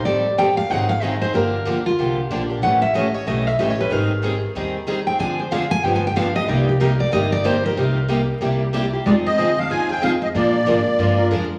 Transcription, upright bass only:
X:1
M:4/4
L:1/8
Q:"Swing" 1/4=187
K:Cm
V:1 name="Upright bass" clef=bass
=A,,,4 _A,,,4 | G,,,2 D,,2 C,,2 B,,,2 | =A,,,4 =B,,,2 A,,,2 | A,,,4 E,,4 |
D,,4 G,,,4 | C,,4 G,,,4 | C,,4 C,,4 | F,,2 D,,2 E,,2 F,,2 |
B,,2 A,, z G,,2 F,,2 |]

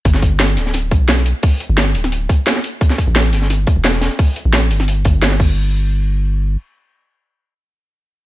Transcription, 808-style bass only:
X:1
M:4/4
L:1/16
Q:"Swing 16ths" 1/4=174
K:G
V:1 name="808-style bass" clef=bass
G,,,6 D,,,4 B,,,4- B,,, z | z3 G,,,3 D,,,4 z6 | z3 A,,,3 G,,,4 z E,,,4 z | z3 A,,,3 G,,,4 G,,,4 G,,,2- |
G,,,12 z4 | z16 |]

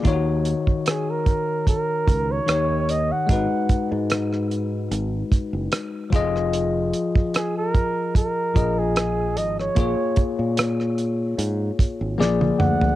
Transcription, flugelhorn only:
X:1
M:4/4
L:1/16
Q:"Swing 16ths" 1/4=74
K:Ebm
V:1 name="Flugelhorn"
z4 A B3 B3 d3 e g- | g3 z12 z | z4 A B3 B3 A3 e d- | d3 z8 z3 g2 |]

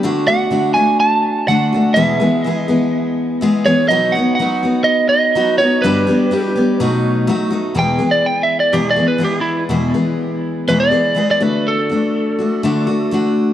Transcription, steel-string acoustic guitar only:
X:1
M:4/4
L:1/8
Q:1/4=124
K:Bmix
V:1 name="Steel-string acoustic guitar"
[=D,A,=DF] [A,DF] [D,A,DF] [A,DF]3 [D,A,DF] [A,DF] | [E,,B,,E,G,B,G] [E,G,B,G] [E,G,B,G] [E,G,B,G]3 [E,G,B,G] [E,G,B,G] | [B,,F,B,DF] [B,DF] [F,B,DF] [B,DF]3 [F,B,DF] [B,DF] | [=G,,=D,=G,B,=D=G] [G,B,DG] [G,B,DG] [G,B,DG] [B,,F,A,^DF]2 [F,A,DF] [A,DF] |
[K:Emix] [E,,B,,E,G,B,G] [E,G,B,G]3 [E,,B,,E,G,B,G] [E,G,B,G] [E,G,B,G]2 | [E,,B,,E,G,B,G] [E,G,B,G]3 [E,,B,,E,G,B,G] [E,G,B,G] [E,G,B,G] [D,A,DF]- | [D,A,DF] [A,DF]2 [A,DF] [D,A,DF] [A,DF] [D,A,DF]2 |]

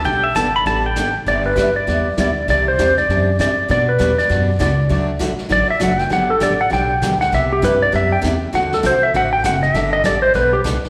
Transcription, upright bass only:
X:1
M:4/4
L:1/8
Q:"Swing" 1/4=198
K:G
V:1 name="Upright bass" clef=bass
B,,,2 G,,,2 A,,,2 _A,,,2 | G,,,2 G,,2 E,,2 D,,2 | C,,2 E,,2 F,,2 G,,2 | B,,2 E,,2 F,,2 ^C,,2 |
D,,2 B,,, z A,,, z F,,,2 | G,,,2 A,,,2 B,,,2 D,,2 | C,,2 G,,2 F,,2 E,,2 | D,,2 C,,2 A,,,2 F,,,2 |
G,,,2 A,,,2 B,,,2 C,, z |]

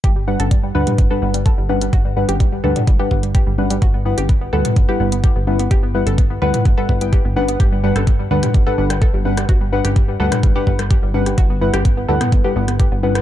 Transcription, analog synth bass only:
X:1
M:4/4
L:1/16
Q:1/4=127
K:G
V:1 name="Analog synth bass" clef=bass
G,,,3 G,,,3 D,, z G,,, z G,,,3 G,,,3 | G,,,3 G,,,3 D,, z G,,, z G,,,3 G,,,3 | G,,,3 G,,,3 D,, z G,,, z G,,,3 G,,,3 | G,,,3 G,,,3 D,, z G,,, z G,,,3 G,,,3 |
G,,,3 G,,,3 D,, z G,,, z G,,,3 G,,,3 | G,,,3 G,,,3 D,, z G,,, z G,,,3 G,,,3 | G,,,3 G,,,3 D,, z G,,, z G,,,3 G,,,3 |]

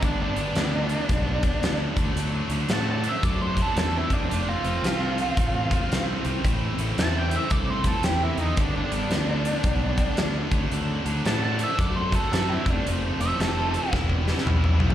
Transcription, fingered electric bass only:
X:1
M:4/4
L:1/8
Q:"Swing" 1/4=112
K:Ddor
V:1 name="Fingered electric bass" clef=bass
G,,, G,,, D,,2 B,,,2 D,, D,, | D,, D,, A,,2 ^F,,2 E,, =F,,, | F,,, F,,, C,,2 A,,,2 C,, C,, | A,,, A,,, E,,2 C,,2 E,, E,, |
G,,, G,,, D,,2 B,,,2 D,, D,, | D,, D,, A,,2 ^F,,2 F,, =F,,, | F,,, F,,, F,,,2 E,,,2 B,,, B,,, |]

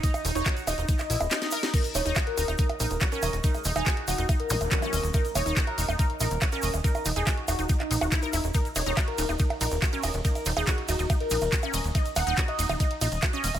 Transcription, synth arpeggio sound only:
X:1
M:4/4
L:1/16
Q:1/4=141
K:Ebm
V:1 name="Synth arpeggio sound"
E z E E G z E E E z _F z E E B E | E z E E G z E E E z E z G D e z | E z E E G z E E E z E z G D e z | E z E E G z E E E z E z G D e z |
E z E E G z E E E z E G _F B F z | E z E E G z E E E z E z G D e z | E z E E G z E E E z E z G D e z | E z E E G z E E E z E z G D e z |]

